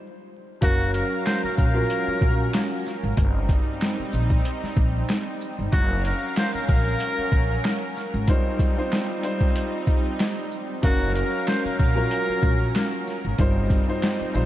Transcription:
0.61 1.00 F#1 loud
0.61 1.65 F#3 medium
0.61 3.14 F#3 medium
0.61 3.14 C#4 medium
0.61 1.65 C#4 medium
0.61 0.91 F#4 loud
0.61 3.14 A#4 loud
0.61 1.66 A#4 loud
0.61 3.14 F5 medium
0.61 1.66 F5 medium
0.61 kick loud
0.61 closed hi-hat medium
0.93 1.22 A#4 medium
0.93 closed hi-hat soft
0.93 shaker medium
1.26 1.42 C5 medium
1.26 finger snap medium
1.26 snare loud
1.26 closed hi-hat medium
1.44 1.57 A#4 medium
1.44 muted upright bass stroke soft
1.57 1.83 A#1 medium
1.57 2.67 A#4 medium
1.57 kick loud
1.57 shaker medium
1.74 2.91 F#3 medium
1.74 2.91 C#4 medium
1.74 2.92 F4 medium
1.74 2.92 A#4 loud
1.90 closed hi-hat loud
2.08 muted upright bass stroke soft
2.21 2.46 A#1 medium
2.21 kick medium
2.21 shaker soft
2.53 finger snap medium
2.53 snare loud
2.53 closed hi-hat medium
2.86 snare soft
2.86 shaker medium
3.03 3.14 G#1 medium
3.16 3.55 G1 loud
3.16 5.70 G3 medium
3.16 5.70 C4 medium
3.16 5.70 D#4 loud
3.16 kick loud
3.16 closed hi-hat medium
3.49 kick medium
3.49 closed hi-hat medium
3.49 shaker soft
3.81 finger snap medium
3.81 snare loud
3.81 closed hi-hat medium
3.99 muted upright bass stroke soft
4.13 4.38 A#1 medium
4.13 shaker medium
4.30 kick medium
4.45 closed hi-hat medium
4.63 muted upright bass stroke soft
4.63 snare soft
4.76 5.01 A#1 medium
4.76 kick medium
4.76 shaker soft
5.09 finger snap medium
5.09 snare loud
5.09 closed hi-hat medium
5.41 shaker medium
5.59 5.70 G1 medium
5.71 6.11 F#1 loud
5.71 8.25 F#3 medium
5.71 8.25 C#4 medium
5.71 6.01 F#4 loud
5.71 8.25 A#4 loud
5.71 8.25 F5 medium
5.71 kick loud
5.71 closed hi-hat medium
6.05 6.34 A#4 medium
6.05 closed hi-hat medium
6.05 shaker medium
6.36 6.53 C5 medium
6.36 finger snap medium
6.36 snare loud
6.36 closed hi-hat medium
6.54 6.67 A#4 medium
6.54 muted upright bass stroke medium
6.68 6.93 A#1 medium
6.68 7.77 A#4 medium
6.68 kick loud
6.68 shaker medium
7.00 closed hi-hat loud
7.18 muted upright bass stroke soft
7.31 7.57 A#1 loud
7.31 kick loud
7.31 shaker soft
7.64 finger snap medium
7.64 snare loud
7.64 closed hi-hat medium
7.96 snare soft
7.96 shaker medium
8.14 8.25 G#1 medium
8.28 8.73 G3 medium
8.28 10.81 G3 medium
8.28 10.81 C4 medium
8.28 10.81 D#4 loud
8.28 8.73 D#4 medium
8.28 8.74 F4 medium
8.28 8.74 C5 loud
8.28 kick loud
8.28 closed hi-hat medium
8.59 kick medium
8.59 closed hi-hat medium
8.59 shaker medium
8.77 9.20 G3 medium
8.77 9.20 D#4 medium
8.77 9.21 F4 medium
8.77 9.21 C5 loud
8.92 finger snap medium
8.92 snare loud
8.92 closed hi-hat medium
9.23 10.42 G3 medium
9.23 10.42 D#4 medium
9.23 10.42 F4 medium
9.23 10.43 C5 loud
9.23 closed hi-hat medium
9.23 shaker medium
9.41 kick medium
9.56 closed hi-hat medium
9.87 kick loud
9.87 shaker soft
10.19 finger snap medium
10.19 snare loud
10.19 closed hi-hat medium
10.52 shaker medium
10.82 11.21 F#1 loud
10.82 11.86 F#3 medium
10.82 13.36 F#3 medium
10.82 13.36 C#4 medium
10.82 11.86 C#4 medium
10.82 11.13 F#4 loud
10.82 13.36 A#4 loud
10.82 11.87 A#4 loud
10.82 13.36 F5 medium
10.82 11.87 F5 medium
10.82 kick loud
10.82 closed hi-hat medium
11.15 11.44 A#4 medium
11.15 closed hi-hat soft
11.15 shaker medium
11.47 11.63 C5 medium
11.47 finger snap medium
11.47 snare loud
11.47 closed hi-hat medium
11.65 11.78 A#4 medium
11.65 muted upright bass stroke soft
11.79 12.04 A#1 medium
11.79 12.88 A#4 medium
11.79 kick loud
11.79 shaker medium
11.95 13.12 F#3 medium
11.95 13.13 C#4 medium
11.95 13.13 F4 medium
11.95 13.13 A#4 loud
12.11 closed hi-hat medium
12.29 muted upright bass stroke soft
12.42 12.67 A#1 medium
12.42 kick loud
12.42 shaker soft
12.75 finger snap medium
12.75 snare loud
12.75 closed hi-hat medium
13.07 snare soft
13.07 shaker medium
13.25 13.36 G#1 medium
13.38 13.77 G1 loud
13.38 14.46 G3 medium
13.38 13.84 G3 medium
13.38 14.46 C4 medium
13.38 14.46 D#4 loud
13.38 13.84 D#4 medium
13.38 13.84 F4 medium
13.38 13.85 C5 loud
13.38 kick loud
13.38 closed hi-hat medium
13.70 kick medium
13.70 closed hi-hat medium
13.70 shaker medium
13.87 14.31 G3 medium
13.87 14.31 D#4 medium
13.87 14.31 F4 medium
13.87 14.32 C5 loud
14.02 finger snap medium
14.02 snare loud
14.02 closed hi-hat medium
14.20 muted upright bass stroke soft
14.33 14.46 A#1 medium
14.33 14.46 G3 medium
14.33 14.46 D#4 medium
14.33 14.46 F4 medium
14.33 14.46 C5 loud
14.33 shaker medium

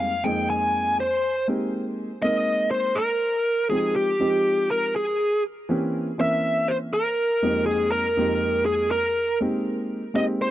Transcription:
0.00 0.11 G3 medium
0.00 0.10 G#3 medium
0.00 0.10 A#3 medium
0.00 0.10 C4 medium
0.00 0.11 D#4 medium
0.00 0.25 F5 medium
0.24 0.99 F2 medium
0.24 1.00 G#3 medium
0.24 1.00 A#3 medium
0.24 1.00 C4 medium
0.24 1.00 D#4 medium
0.24 1.00 G#4 medium
0.24 0.47 G5 medium
0.50 0.96 G#5 medium
1.00 1.46 C5 medium
1.48 2.08 G#3 medium
1.48 2.08 A#3 medium
1.48 2.09 C4 medium
1.48 2.09 D#4 medium
1.48 2.09 G4 medium
2.22 2.98 G#3 medium
2.22 2.98 A#3 medium
2.22 2.98 C4 medium
2.22 2.98 D#4 medium
2.22 2.99 A#4 medium
2.22 2.71 D#5 medium
2.71 2.97 C5 medium
2.95 3.66 A#4 medium
3.70 4.09 F3 medium
3.70 4.10 G#3 medium
3.70 4.10 C4 medium
3.70 4.10 D#4 medium
3.70 4.11 G4 medium
3.70 3.96 G#4 medium
3.96 4.71 G4 medium
4.19 4.95 F3 medium
4.19 4.96 G#3 medium
4.19 4.96 C4 medium
4.19 4.96 D#4 medium
4.19 4.96 G4 medium
4.71 4.96 A#4 medium
4.96 5.42 G#4 medium
5.69 6.08 E3 medium
5.69 6.08 A#3 medium
5.69 6.08 C4 medium
5.69 6.08 C#4 medium
5.69 6.09 G4 medium
6.18 6.94 E3 medium
6.18 6.94 A#3 medium
6.18 6.94 C4 medium
6.18 6.94 C#4 medium
6.18 6.95 A#4 medium
6.18 6.71 E5 medium
6.68 6.75 C5 medium
6.93 7.66 A#4 medium
7.42 8.03 F2 medium
7.42 8.03 G#3 medium
7.42 8.03 A#3 medium
7.42 8.03 C4 medium
7.42 8.03 D#4 medium
7.42 8.04 G4 medium
7.66 7.91 G#4 medium
7.92 8.65 A#4 medium
8.17 8.92 F2 medium
8.17 8.92 G#3 medium
8.17 8.93 A#3 medium
8.17 8.93 C4 medium
8.17 8.93 D#4 medium
8.17 8.93 G4 medium
8.66 8.89 G#4 medium
8.91 9.37 A#4 medium
9.41 10.01 G#3 medium
9.41 10.01 A#3 medium
9.41 10.01 C4 medium
9.41 10.02 D#4 medium
9.41 10.02 G4 medium
10.14 10.51 G#3 medium
10.14 10.51 A#3 medium
10.14 10.51 C4 medium
10.14 10.51 D#4 medium
10.14 10.51 G4 medium
10.14 10.22 D#5 medium
10.42 10.51 C5 medium

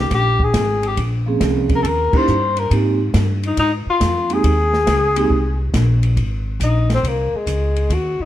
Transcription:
0.00 0.12 G4 medium
0.11 0.53 A#1 medium
0.11 0.45 G4 loud
0.11 kick soft
0.11 snare soft
0.11 ride medium
0.40 0.89 G#4 loud
0.40 kick medium
0.54 0.96 G#1 medium
0.54 kick soft
0.54 snare medium
0.54 hi-hat pedal soft
0.54 ride medium
0.83 ride soft
0.87 1.00 G4 medium
0.97 1.40 A#1 medium
0.97 kick soft
0.97 ride medium
1.26 1.81 F3 medium
1.26 1.81 A#3 medium
1.26 1.82 C4 medium
1.26 1.82 C#4 medium
1.26 1.82 G#4 medium
1.41 1.83 C2 medium
1.41 kick soft
1.41 snare medium
1.41 hi-hat pedal medium
1.41 ride medium
1.69 kick medium
1.69 ride medium
1.75 1.82 A#4 medium
1.83 2.11 D#2 medium
1.83 1.88 A4 medium
1.83 2.19 A#4 medium
1.83 kick soft
1.83 ride medium
2.12 2.26 A#3 medium
2.12 2.26 C#4 medium
2.12 2.26 D#4 medium
2.12 2.26 E4 medium
2.12 2.26 G4 medium
2.12 muted upright bass stroke soft
2.12 kick medium
2.12 crash medium
2.17 2.61 C5 loud
2.28 2.70 G2 medium
2.28 hi-hat pedal medium
2.57 2.72 A#4 medium
2.57 ride soft
2.70 3.13 G#2 medium
2.70 2.97 G#3 medium
2.70 2.97 A#3 medium
2.70 2.97 C4 medium
2.70 2.98 D#4 medium
2.70 2.97 G4 medium
2.70 kick soft
2.70 ride medium
3.14 3.56 G2 loud
3.14 kick soft
3.14 snare medium
3.14 hi-hat pedal soft
3.14 ride medium
3.43 3.58 D#4 medium
3.43 ride soft
3.57 3.84 G#2 medium
3.57 3.72 D#4 medium
3.57 kick soft
3.57 ride medium
3.86 4.34 F4 medium
3.86 muted upright bass stroke soft
4.01 4.43 F2 medium
4.01 kick soft
4.01 snare medium
4.01 hi-hat pedal medium
4.01 ride medium
4.29 4.42 G#3 medium
4.29 4.42 A#3 medium
4.29 4.43 C4 medium
4.29 4.43 D#4 medium
4.29 4.43 G4 medium
4.29 5.75 G#4 loud
4.29 ride soft
4.44 4.86 D#2 medium
4.44 kick soft
4.44 ride medium
4.73 snare soft
4.87 5.29 C#2 loud
4.87 kick soft
4.87 snare medium
4.87 hi-hat pedal soft
4.87 ride medium
5.15 5.28 G#3 medium
5.15 5.29 A#3 medium
5.15 5.29 C4 medium
5.15 5.29 D#4 medium
5.15 5.29 G4 medium
5.15 ride medium
5.30 5.72 C2 medium
5.30 kick soft
5.73 6.16 A#1 loud
5.73 kick soft
5.73 snare medium
5.73 hi-hat pedal medium
5.73 ride medium
6.03 ride soft
6.17 6.59 G#1 medium
6.17 kick soft
6.17 ride medium
6.60 7.02 A#1 medium
6.60 6.89 D#4 medium
6.60 kick soft
6.60 hi-hat pedal medium
6.60 ride medium
6.90 snare medium
6.90 ride soft
6.94 7.09 C4 medium
7.03 7.30 C2 medium
7.03 kick soft
7.03 ride medium
7.08 7.37 A#3 medium
7.33 7.95 G#3 medium
7.33 muted upright bass stroke soft
7.46 7.88 C#2 medium
7.46 kick soft
7.46 hi-hat pedal medium
7.46 ride medium
7.76 ride soft
7.90 8.17 D#2 medium
7.90 8.23 F#4 medium
7.90 kick soft
7.90 ride medium
8.19 8.25 D#4 medium
8.19 muted upright bass stroke soft

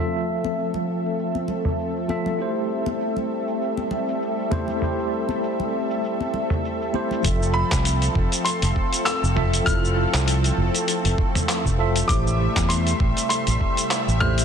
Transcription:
0.00 2.08 F3 medium
0.00 2.36 F3 medium
0.00 7.20 A3 medium
0.00 7.20 C4 medium
0.00 2.09 F4 medium
0.00 2.09 A4 medium
0.00 7.20 A4 medium
0.00 2.10 E5 medium
0.00 7.21 E5 medium
0.14 shaker soft
0.44 high conga medium
0.44 shaker medium
0.58 shaker soft
0.74 low conga medium
0.74 shaker soft
1.05 shaker medium
1.19 shaker soft
1.35 high conga medium
1.35 shaker soft
1.48 low conga medium
1.65 mid tom medium
1.65 shaker medium
1.79 shaker soft
1.96 shaker soft
2.08 2.36 F3 medium
2.08 2.36 F4 medium
2.08 2.36 A4 medium
2.08 2.37 E5 medium
2.08 high conga medium
2.26 low conga medium
2.26 shaker medium
2.37 7.20 G3 medium
2.37 4.47 A3 medium
2.37 4.48 E4 medium
2.37 4.49 G4 medium
2.37 shaker medium
2.42 4.49 C5 medium
2.57 shaker soft
2.86 high conga medium
2.86 shaker medium
3.01 shaker medium
3.16 low conga medium
3.16 shaker soft
3.48 shaker medium
3.61 shaker medium
3.77 high conga medium
3.77 shaker soft
3.91 low conga medium
4.08 shaker medium
4.22 shaker medium
4.39 shaker soft
4.50 4.78 A3 medium
4.50 4.78 E4 medium
4.50 4.79 G4 medium
4.50 4.79 C5 medium
4.50 mid tom medium
4.50 high conga medium
4.68 low conga medium
4.68 shaker medium
4.80 6.90 A3 medium
4.80 6.90 E4 medium
4.80 6.91 G4 medium
4.80 mid tom medium
4.80 shaker soft
4.84 6.92 C5 medium
5.00 shaker soft
5.29 high conga medium
5.29 shaker medium
5.43 shaker medium
5.60 low conga medium
5.60 shaker soft
5.91 shaker medium
6.04 shaker soft
6.21 high conga medium
6.21 shaker soft
6.34 low conga medium
6.50 mid tom medium
6.50 shaker medium
6.65 shaker soft
6.82 shaker soft
6.93 7.21 A3 medium
6.93 7.21 E4 medium
6.93 7.21 G4 medium
6.93 7.22 C5 medium
6.93 high conga medium
7.11 low conga medium
7.11 shaker medium
7.22 7.61 F1 loud
7.22 9.32 F3 medium
7.22 12.05 F3 medium
7.22 14.45 A3 medium
7.22 12.05 C4 medium
7.22 9.33 F4 medium
7.22 12.05 A4 medium
7.22 9.34 A4 medium
7.22 kick loud
7.22 closed hi-hat medium
7.22 shaker medium
7.27 9.34 E5 medium
7.43 shaker soft
7.54 8.48 B5 loud
7.72 8.07 C2 medium
7.72 kick loud
7.72 clap medium
7.72 closed hi-hat soft
7.72 shaker medium
7.85 closed hi-hat medium
7.85 shaker medium
8.02 closed hi-hat soft
8.02 shaker soft
8.15 8.26 F1 medium
8.15 kick loud
8.32 closed hi-hat soft
8.32 shaker medium
8.45 9.07 C6 medium
8.45 closed hi-hat medium
8.45 shaker medium
8.62 8.71 F1 loud
8.62 closed hi-hat soft
8.62 shaker soft
8.76 kick medium
8.93 closed hi-hat soft
8.93 shaker medium
9.05 9.62 E6 medium
9.05 clap medium
9.05 closed hi-hat medium
9.05 shaker medium
9.23 9.59 F1 medium
9.23 shaker soft
9.35 9.63 F3 medium
9.35 9.63 F4 medium
9.35 9.64 A4 medium
9.35 9.64 E5 loud
9.35 mid tom medium
9.54 closed hi-hat soft
9.54 shaker medium
9.64 10.04 F1 loud
9.64 11.74 F3 medium
9.64 11.75 F4 medium
9.64 11.76 A4 medium
9.64 10.23 F6 loud
9.64 kick loud
9.64 closed hi-hat medium
9.64 mid tom medium
9.64 shaker medium
9.85 shaker soft
10.14 10.50 C2 medium
10.14 clap medium
10.14 closed hi-hat soft
10.14 shaker medium
10.28 closed hi-hat medium
10.28 shaker medium
10.44 closed hi-hat soft
10.44 shaker soft
10.57 10.68 F1 medium
10.75 closed hi-hat soft
10.75 shaker medium
10.88 closed hi-hat medium
10.88 shaker medium
11.05 11.13 F1 loud
11.05 closed hi-hat soft
11.05 shaker soft
11.18 kick loud
11.35 closed hi-hat soft
11.35 mid tom medium
11.35 shaker medium
11.49 clap medium
11.49 closed hi-hat medium
11.49 shaker medium
11.65 12.01 F1 medium
11.65 kick medium
11.65 shaker soft
11.78 12.05 F3 medium
11.78 12.06 F4 medium
11.78 12.06 A4 medium
11.78 12.07 E5 loud
11.96 closed hi-hat soft
11.96 shaker medium
12.07 12.46 A1 loud
12.07 14.45 C3 medium
12.07 14.45 G3 medium
12.07 14.17 A3 medium
12.07 14.18 E4 medium
12.07 14.19 G4 medium
12.07 14.45 E5 medium
12.07 12.71 D6 medium
12.07 kick loud
12.07 closed hi-hat medium
12.07 shaker medium
12.12 14.19 C5 medium
12.27 shaker soft
12.56 12.92 E2 medium
12.56 kick loud
12.56 clap medium
12.56 closed hi-hat soft
12.56 shaker medium
12.69 13.28 C6 medium
12.69 closed hi-hat medium
12.69 shaker medium
12.87 closed hi-hat soft
12.87 shaker soft
13.00 13.11 A1 medium
13.00 kick loud
13.17 closed hi-hat soft
13.17 shaker medium
13.29 14.23 C6 medium
13.29 closed hi-hat medium
13.29 shaker medium
13.47 13.56 A1 loud
13.47 closed hi-hat soft
13.47 shaker soft
13.61 kick medium
13.77 closed hi-hat soft
13.77 shaker medium
13.91 clap medium
13.91 closed hi-hat medium
13.91 shaker medium
14.08 14.44 A1 medium
14.08 shaker soft
14.20 14.45 A3 medium
14.20 14.45 E4 medium
14.20 14.45 G4 medium
14.20 14.45 C5 loud
14.20 14.43 F6 loud
14.20 mid tom medium
14.38 closed hi-hat soft
14.38 shaker medium

